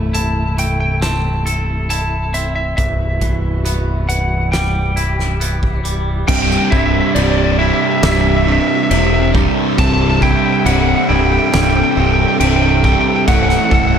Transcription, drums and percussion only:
0.14 closed hi-hat medium
0.58 closed hi-hat medium
1.02 snare medium
1.02 closed hi-hat medium
1.47 closed hi-hat medium
1.90 closed hi-hat medium
2.34 closed hi-hat soft
2.78 kick medium
2.78 closed hi-hat medium
3.21 kick medium
3.21 closed hi-hat soft
3.66 closed hi-hat medium
4.09 closed hi-hat medium
4.53 snare medium
4.53 closed hi-hat medium
4.97 closed hi-hat medium
5.19 snare soft
5.41 closed hi-hat medium
5.63 kick medium
5.85 closed hi-hat soft
6.28 kick loud
6.28 crash loud
6.28 crash medium
6.51 snare soft
6.72 kick medium
7.16 crash medium
8.03 snare loud
8.03 crash medium
8.91 crash medium
9.35 kick medium
9.78 kick loud
9.78 crash medium
10.22 kick medium
10.66 crash medium
11.54 snare loud
11.54 crash medium
12.40 crash medium
12.84 kick medium
13.28 kick loud
13.28 crash medium
13.49 snare soft
13.71 kick medium

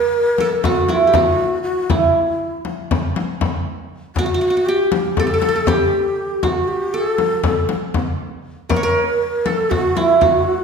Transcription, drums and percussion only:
0.38 frame drum medium
0.64 frame drum medium
0.89 frame drum medium
1.14 frame drum medium
1.90 frame drum medium
2.65 frame drum medium
2.91 frame drum medium
3.16 frame drum medium
3.41 frame drum medium
4.16 frame drum medium
4.92 frame drum medium
5.17 frame drum medium
5.42 frame drum medium
5.67 frame drum medium
6.43 frame drum medium
7.18 frame drum medium
7.43 frame drum medium
7.69 frame drum medium
7.94 frame drum medium
8.70 frame drum medium
9.46 frame drum medium
9.71 frame drum medium
9.97 frame drum medium
10.22 frame drum medium

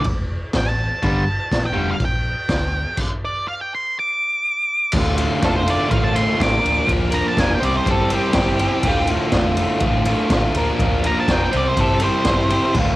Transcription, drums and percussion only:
0.04 kick loud
0.04 crash medium
0.53 kick loud
0.53 snare loud
0.53 crash medium
1.03 kick loud
1.03 crash medium
1.52 kick loud
1.52 snare loud
1.52 crash medium
2.00 kick loud
2.00 crash medium
2.49 kick loud
2.49 snare loud
2.49 crash medium
2.97 kick medium
2.97 crash medium
4.92 kick loud
4.92 crash loud
5.18 ride medium
5.42 kick loud
5.42 snare loud
5.42 ride medium
5.67 ride medium
5.91 kick loud
5.91 ride medium
6.16 ride medium
6.40 kick loud
6.40 snare loud
6.40 ride loud
6.65 ride medium
6.88 kick loud
6.88 ride loud
7.12 ride medium
7.37 kick loud
7.37 snare loud
7.37 ride medium
7.63 ride medium
7.86 kick loud
7.86 ride loud
8.10 ride medium
8.33 kick loud
8.33 snare loud
8.33 ride loud
8.59 ride medium
8.83 kick loud
8.83 ride loud
9.07 ride medium
9.32 kick loud
9.32 snare loud
9.32 ride medium
9.57 ride medium
9.80 kick loud
9.80 ride medium
10.05 ride medium
10.30 kick loud
10.30 snare loud
10.30 ride loud
10.55 ride medium
10.79 kick loud
10.79 ride loud
11.04 ride medium
11.28 kick loud
11.28 snare loud
11.28 ride medium
11.53 ride medium
11.77 kick loud
11.77 ride loud
12.00 ride medium
12.25 kick loud
12.25 snare loud
12.25 ride loud
12.50 ride medium
12.74 kick loud
12.74 crash medium

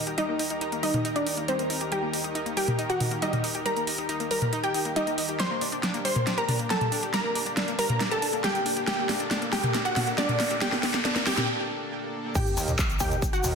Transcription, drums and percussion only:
0.07 closed hi-hat medium
0.18 closed hi-hat medium
0.39 open hi-hat loud
0.50 closed hi-hat medium
0.61 closed hi-hat medium
0.72 closed hi-hat soft
0.83 open hi-hat loud
0.94 closed hi-hat medium
0.94 mid tom medium
1.05 closed hi-hat medium
1.16 closed hi-hat soft
1.27 open hi-hat loud
1.37 closed hi-hat soft
1.48 closed hi-hat medium
1.59 closed hi-hat soft
1.70 open hi-hat loud
1.81 closed hi-hat medium
1.92 closed hi-hat medium
2.13 open hi-hat loud
2.24 closed hi-hat medium
2.35 closed hi-hat medium
2.46 closed hi-hat soft
2.57 open hi-hat loud
2.68 closed hi-hat medium
2.68 mid tom medium
2.79 closed hi-hat medium
2.90 closed hi-hat soft
3.00 open hi-hat loud
3.00 mid tom medium
3.11 closed hi-hat medium
3.22 closed hi-hat medium
3.33 closed hi-hat soft
3.33 mid tom medium
3.44 open hi-hat loud
3.55 closed hi-hat medium
3.66 closed hi-hat medium
3.77 closed hi-hat soft
3.87 open hi-hat loud
3.98 closed hi-hat medium
4.09 closed hi-hat medium
4.20 closed hi-hat soft
4.31 open hi-hat loud
4.42 closed hi-hat soft
4.42 mid tom medium
4.53 closed hi-hat medium
4.64 closed hi-hat soft
4.74 open hi-hat loud
4.85 closed hi-hat soft
4.96 closed hi-hat medium
5.07 closed hi-hat soft
5.18 open hi-hat loud
5.29 closed hi-hat soft
5.40 snare soft
5.40 closed hi-hat medium
5.61 open hi-hat loud
5.72 closed hi-hat medium
5.83 snare soft
5.83 closed hi-hat medium
5.94 closed hi-hat soft
6.05 open hi-hat loud
6.16 closed hi-hat soft
6.16 mid tom medium
6.27 snare medium
6.27 closed hi-hat medium
6.38 closed hi-hat soft
6.49 open hi-hat loud
6.49 mid tom medium
6.59 closed hi-hat soft
6.70 snare medium
6.70 closed hi-hat medium
6.81 closed hi-hat soft
6.81 mid tom medium
6.92 open hi-hat loud
7.03 closed hi-hat soft
7.14 snare medium
7.14 closed hi-hat medium
7.35 open hi-hat loud
7.46 closed hi-hat medium
7.57 snare medium
7.57 closed hi-hat medium
7.68 closed hi-hat soft
7.79 open hi-hat loud
7.90 closed hi-hat medium
7.90 mid tom medium
8.00 snare medium
8.00 closed hi-hat medium
8.11 closed hi-hat soft
8.22 open hi-hat loud
8.33 closed hi-hat medium
8.44 snare medium
8.44 closed hi-hat medium
8.55 closed hi-hat soft
8.66 open hi-hat loud
8.77 closed hi-hat medium
8.87 snare medium
8.87 closed hi-hat medium
9.09 snare medium
9.09 open hi-hat loud
9.20 closed hi-hat medium
9.31 snare medium
9.31 closed hi-hat medium
9.42 closed hi-hat soft
9.53 snare medium
9.53 open hi-hat loud
9.64 closed hi-hat medium
9.64 mid tom medium
9.74 snare medium
9.74 closed hi-hat medium
9.85 closed hi-hat soft
9.96 snare medium
9.96 open hi-hat loud
9.96 mid tom medium
10.07 closed hi-hat medium
10.18 snare medium
10.18 closed hi-hat medium
10.29 closed hi-hat soft
10.29 mid tom medium
10.40 snare medium
10.40 open hi-hat loud
10.51 closed hi-hat medium
10.62 snare medium
10.62 closed hi-hat medium
10.72 snare medium
10.83 snare medium
10.83 open hi-hat loud
10.94 snare medium
10.94 closed hi-hat medium
11.05 snare loud
11.05 closed hi-hat medium
11.16 snare medium
11.16 closed hi-hat soft
11.27 snare loud
11.27 open hi-hat loud
11.38 snare medium
11.38 closed hi-hat medium
11.38 mid tom medium
12.35 kick loud
12.35 closed hi-hat medium
12.35 crash loud
12.35 shaker medium
12.47 shaker soft
12.57 open hi-hat loud
12.57 shaker medium
12.68 closed hi-hat medium
12.68 mid tom medium
12.68 shaker soft
12.79 kick loud
12.79 clap loud
12.79 closed hi-hat medium
12.79 shaker medium
12.90 closed hi-hat soft
12.90 shaker soft
13.00 kick medium
13.00 open hi-hat loud
13.00 shaker medium
13.11 closed hi-hat medium
13.11 mid tom medium
13.11 shaker soft
13.22 kick loud
13.22 closed hi-hat medium
13.22 shaker soft
13.33 closed hi-hat soft
13.33 shaker soft
13.44 open hi-hat loud
13.44 mid tom medium
13.44 shaker medium

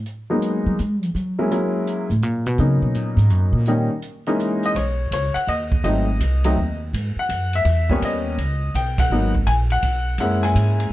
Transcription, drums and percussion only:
0.06 closed hi-hat soft
0.42 closed hi-hat soft
0.79 closed hi-hat soft
1.03 closed hi-hat soft
1.16 closed hi-hat soft
1.51 closed hi-hat soft
1.87 closed hi-hat soft
2.11 closed hi-hat soft
2.22 closed hi-hat soft
2.46 closed hi-hat soft
2.58 closed hi-hat soft
2.95 closed hi-hat soft
3.18 closed hi-hat soft
3.30 closed hi-hat soft
3.66 closed hi-hat soft
4.02 closed hi-hat soft
4.26 closed hi-hat soft
4.40 closed hi-hat soft
4.63 closed hi-hat soft
4.75 kick soft
4.75 ride medium
5.12 kick soft
5.12 hi-hat pedal medium
5.12 ride medium
5.36 ride soft
5.48 kick soft
5.48 ride medium
5.72 kick medium
5.84 kick soft
5.84 ride medium
6.20 kick soft
6.20 hi-hat pedal medium
6.20 ride medium
6.44 ride medium
6.57 kick soft
6.94 kick soft
6.94 ride medium
7.29 kick soft
7.29 hi-hat pedal soft
7.29 ride medium
7.53 ride soft
7.65 kick soft
7.65 ride medium
7.89 kick soft
8.02 kick soft
8.02 ride medium
8.38 kick soft
8.38 ride soft
8.75 kick soft
8.75 hi-hat pedal medium
8.75 ride medium
8.98 kick medium
8.98 ride medium
9.34 kick soft
9.47 kick soft
9.47 hi-hat pedal medium
9.47 ride medium
9.70 ride soft
9.82 kick soft
9.82 ride medium
10.18 kick soft
10.18 ride medium
10.43 snare soft
10.55 kick soft
10.55 hi-hat pedal soft
10.55 ride medium
10.80 ride soft

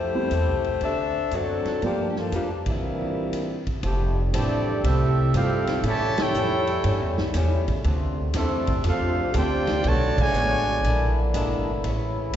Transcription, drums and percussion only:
0.31 kick soft
0.31 hi-hat pedal medium
0.31 ride medium
0.64 ride soft
0.81 kick soft
0.81 ride medium
1.31 kick soft
1.31 hi-hat pedal medium
1.31 ride medium
1.65 snare soft
1.65 ride soft
1.82 kick soft
1.82 ride medium
2.16 snare soft
2.32 kick soft
2.32 hi-hat pedal medium
2.32 ride medium
2.66 kick medium
2.66 ride medium
3.33 kick soft
3.33 hi-hat pedal medium
3.33 ride medium
3.67 kick medium
3.67 ride soft
3.83 kick soft
3.83 ride medium
4.34 kick soft
4.34 hi-hat pedal medium
4.34 ride medium
4.84 kick soft
4.84 ride medium
5.34 kick soft
5.34 hi-hat pedal medium
5.34 ride medium
5.67 snare medium
5.67 ride medium
5.83 kick soft
5.83 ride medium
6.18 snare medium
6.18 ride medium
6.34 hi-hat pedal medium
6.67 ride medium
6.84 kick soft
6.84 ride medium
7.18 snare medium
7.34 kick soft
7.34 snare soft
7.34 hi-hat pedal medium
7.34 ride medium
7.68 kick medium
7.68 ride medium
7.84 kick soft
7.84 ride medium
8.34 kick soft
8.34 snare soft
8.34 hi-hat pedal medium
8.34 ride medium
8.67 kick medium
8.67 ride medium
8.84 kick soft
8.84 ride medium
9.34 kick soft
9.34 hi-hat pedal medium
9.34 ride medium
9.67 snare medium
9.67 ride medium
9.84 kick soft
9.84 ride medium
10.18 kick loud
10.18 crash medium
10.34 hi-hat pedal medium
10.84 kick soft
10.84 ride medium
11.34 kick soft
11.34 hi-hat pedal medium
11.34 ride medium
11.84 kick soft
11.84 ride medium

